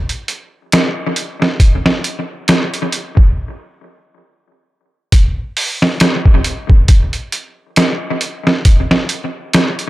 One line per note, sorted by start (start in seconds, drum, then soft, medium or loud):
0.09 closed hi-hat soft
0.28 closed hi-hat medium
0.72 snare loud
0.72 closed hi-hat medium
1.16 closed hi-hat medium
1.42 snare soft
1.60 kick loud
1.60 closed hi-hat medium
1.86 snare soft
2.04 closed hi-hat medium
2.48 snare loud
2.48 closed hi-hat medium
2.74 closed hi-hat soft
2.92 closed hi-hat medium
3.17 kick medium
5.12 kick loud
5.12 closed hi-hat medium
5.57 open hi-hat medium
5.82 snare soft
6.00 snare loud
6.00 closed hi-hat medium
6.25 kick medium
6.44 closed hi-hat medium
6.70 kick medium
6.88 kick loud
6.88 closed hi-hat medium
7.13 closed hi-hat soft
7.32 closed hi-hat medium
7.76 snare loud
7.76 closed hi-hat medium
8.21 closed hi-hat medium
8.47 snare soft
8.65 kick loud
8.65 closed hi-hat medium
8.91 snare medium
9.09 closed hi-hat medium
9.53 snare loud
9.53 closed hi-hat medium
9.79 closed hi-hat soft